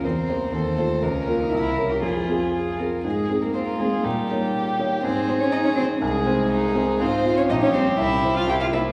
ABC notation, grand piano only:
X:1
M:2/4
L:1/8
Q:1/4=122
K:Fm
V:1 name="Grand piano"
=E,, [B,Gc] _E,, [=A,Fc] | D,, [B,FB] C,, [DGB] | F,, [CFA]2 [CFA] | [K:Ab] A,, [CEA]2 [CEA] |
B,, [B,Ed]2 [B,Ed] | A,, [CEc]2 [CEc] | C,, [CEc]2 [CEc] | [K:Cphr] A,, [CFf] B,,, [G,Gd] |
C,, [G,Gc] C,, [B,Gc] |]